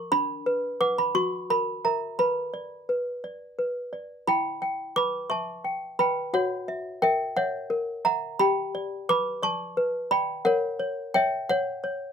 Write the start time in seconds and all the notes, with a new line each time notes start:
Already playing: A#4
0.12 D4 B5
0.46 B4
0.80 B4 F#5 D6
0.98 B5
1.15 F#4 C#6
1.50 A#4 B5
1.85 A#4 E5 A#5
2.19 B4 B5
2.54 D5
2.89 B4
3.24 D5
3.59 B4
3.93 D5
4.27 E4 G5 B5
4.62 G5
4.96 B4 B5 D6
5.30 E5 A5 C#6
5.64 G5
5.99 B4 G5 B5
6.34 F#4 C#5 F#5
6.68 E5
7.02 A#4 E5 G5
7.36 C#5 E5 F#5
7.70 A#4
8.05 E5 F#5 A#5
8.39 G4 G5 B5
8.75 D5
9.09 B4 B5 D6
9.43 D5 A5 C#6
9.77 B4
10.11 D5 G5 B5
10.45 A#4 C#5 F#5
10.79 C#5
11.14 C#5 E5 G5
11.49 C#5 F#5
11.84 C#5